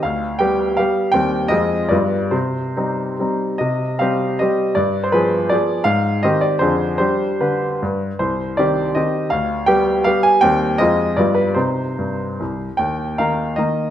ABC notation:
X:1
M:3/4
L:1/16
Q:1/4=156
K:Cm
V:1 name="Grand piano"
f4 g4 f4 | g4 e4 d4 | c8- c2 z2 | e4 f4 e4 |
d3 c =B4 d4 | f4 e2 d2 c4 | c4 =B6 z2 | c4 d4 e4 |
f4 g4 f2 a2 | g4 e4 d2 =B2 | c8- c2 z2 | [K:Eb] g4 f4 e4 |]
V:2 name="Grand piano"
D,,4 [G,=B,G]4 [G,B,G]4 | [E,,G,CG]4 [F,,A,CF]4 [G,,G,=B,F]4 | C,4 [G,CE]4 [G,CE]4 | C,4 [G,CG]4 [G,CG]4 |
G,,4 [F,=B,A]4 [F,B,A]4 | A,,4 [E,CG]4 [F,,D,DA]4 | [G,DG]4 D,4 G,,4 | C,,4 [E,CG]4 [E,CG]4 |
D,,4 [G,=B,G]4 [G,B,G]4 | [E,,G,CG]4 [F,,A,CF]4 [G,,G,=B,F]4 | [C,CE]4 G,,4 C,,4 | [K:Eb] E,,4 [E,B,E]4 [E,B,E]4 |]